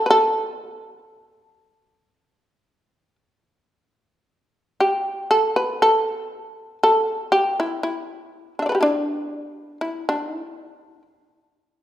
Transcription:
0.06 0.10 B4 medium
0.10 3.15 A4 medium
4.80 5.26 G4 medium
5.31 5.53 A4 medium
5.56 5.79 B4 medium
5.82 6.78 A4 medium
6.83 7.29 A4 medium
7.32 7.55 G4 medium
7.60 7.82 E4 medium
7.83 8.54 E4 medium
8.59 8.71 D4 medium
8.59 8.66 E5 soft
8.66 8.83 B4 soft
8.66 8.69 D5 soft
8.72 8.80 G4 soft
8.72 8.74 A4 soft
8.81 9.77 D4 medium
8.81 8.93 E4 medium
9.81 10.04 E4 medium
10.09 10.26 D4 medium
10.26 10.37 D#4 medium
10.37 11.02 E4 medium

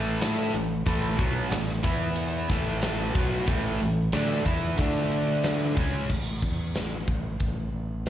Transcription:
0.00 0.19 A1 loud
0.00 0.21 A2 medium
0.00 0.21 E3 loud
0.00 0.20 A3 loud
0.21 0.52 A2 medium
0.21 0.53 A3 loud
0.21 0.53 E4 loud
0.21 0.54 A4 medium
0.21 snare loud
0.21 closed hi-hat medium
0.54 0.85 A1 medium
0.54 0.80 A2 medium
0.54 0.81 E3 medium
0.54 closed hi-hat medium
0.86 1.17 A1 loud
0.86 1.17 A2 medium
0.86 1.18 E3 loud
0.86 1.18 A3 loud
0.86 kick loud
0.86 closed hi-hat medium
1.17 1.50 B1 medium
1.17 1.50 B2 medium
1.17 1.50 F#3 loud
1.17 1.51 B3 medium
1.17 kick loud
1.17 closed hi-hat medium
1.50 1.82 A1 medium
1.50 1.77 A2 medium
1.50 1.78 E3 medium
1.50 snare loud
1.50 closed hi-hat medium
1.69 snare soft
1.83 2.46 E2 loud
1.83 2.48 E3 medium
1.83 2.49 B3 medium
1.83 2.49 E4 medium
1.83 kick loud
1.83 closed hi-hat medium
2.16 closed hi-hat loud
2.49 3.11 A1 loud
2.49 3.13 A2 medium
2.49 3.14 E3 loud
2.49 3.15 A3 loud
2.49 kick medium
2.49 snare soft
2.49 closed hi-hat medium
2.82 snare loud
2.82 closed hi-hat medium
3.14 3.46 B1 loud
3.14 3.46 B2 loud
3.14 3.47 F#3 medium
3.14 3.47 B3 loud
3.14 kick loud
3.14 closed hi-hat medium
3.46 3.78 A1 medium
3.46 3.79 A2 medium
3.46 3.79 E3 loud
3.46 3.80 A3 medium
3.46 kick loud
3.46 closed hi-hat loud
3.80 4.12 A1 medium
3.80 4.07 A2 medium
3.80 4.07 E3 medium
3.80 closed hi-hat medium
4.12 4.44 D2 medium
4.12 4.44 D3 medium
4.12 4.45 A3 medium
4.12 4.46 D4 medium
4.12 snare loud
4.12 closed hi-hat medium
4.31 snare soft
4.45 4.76 E2 medium
4.45 4.76 E3 medium
4.45 4.78 B3 medium
4.45 4.78 E4 medium
4.45 kick loud
4.45 closed hi-hat medium
4.77 5.73 D2 medium
4.77 5.75 D3 medium
4.77 5.76 A3 medium
4.77 5.76 D4 loud
4.77 kick loud
4.77 closed hi-hat medium
5.12 closed hi-hat medium
5.43 snare loud
5.43 closed hi-hat medium
5.75 6.07 C#2 medium
5.75 6.08 C#3 loud
5.75 6.09 G#3 medium
5.75 6.09 C#4 loud
5.75 kick loud
5.75 closed hi-hat medium
6.09 6.40 A1 medium
6.09 kick loud
6.09 crash medium
6.42 6.73 E2 medium
6.42 kick medium
6.74 7.05 A1 medium
6.74 snare loud
6.74 closed hi-hat soft
7.07 7.38 A1 medium
7.07 kick medium
7.40 7.71 A1 medium
7.40 kick medium
7.40 closed hi-hat medium
7.73 8.04 A1 medium
8.06 8.09 E2 medium
8.06 closed hi-hat medium

